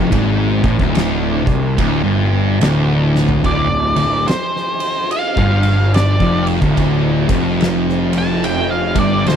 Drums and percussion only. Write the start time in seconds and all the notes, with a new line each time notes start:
0.12 kick, ride bell
0.64 kick
0.80 kick
0.95 snare, ride bell
1.47 kick
1.78 kick, ride bell
2.61 snare, ride bell
3.16 snare
3.29 floor tom
3.44 kick, ride
3.96 ride
4.28 snare, ride
4.56 snare
4.80 ride
5.11 ride
5.37 kick
5.63 ride
5.94 snare, ride
6.20 kick
6.47 ride
6.62 kick
6.77 kick, ride
7.29 kick, ride
7.61 snare, ride
7.89 snare
8.13 ride
8.44 ride
8.96 kick, ride
9.26 snare, ride